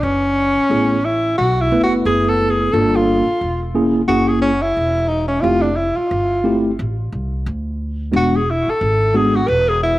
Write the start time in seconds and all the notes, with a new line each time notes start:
0.03 F#1 C#4
0.58 muted upright bass stroke
0.70 A1 A3 B3 E4 G#4
1.05 E4
1.38 B1 F#4
1.61 E4
1.72 F#1 A3 B3 E4 B4
1.84 F#4
2.05 F#1 G#4
2.29 A4
2.50 G#4
2.72 G1 A#3 D4 F4 A4
2.96 F4
3.27 muted upright bass stroke
3.41 E1
3.74 A#3 C#4 E4 G#4
4.08 F#1 A#3 C#4 E4 F#4 G#4
4.29 G#4
4.42 C#4
4.62 E4
4.77 E1
5.08 D#4
5.28 C#4
5.41 F1 A3 C4 E4 F4 G4
5.62 D4
5.76 E4
5.97 F4, muted upright bass stroke
6.11 G1
6.44 A3 C4 E4 G4
6.79 A1
7.12 C2
7.46 D2
8.12 E1 G#3 B3 D4 F#4
8.17 F#4
8.36 G#4
8.50 E4
8.67 A4, muted upright bass stroke
8.81 G#1
9.14 G#3 B3 D4 F#4 G#4
9.36 F#4
9.48 E1 B4
9.69 G#4
9.83 E4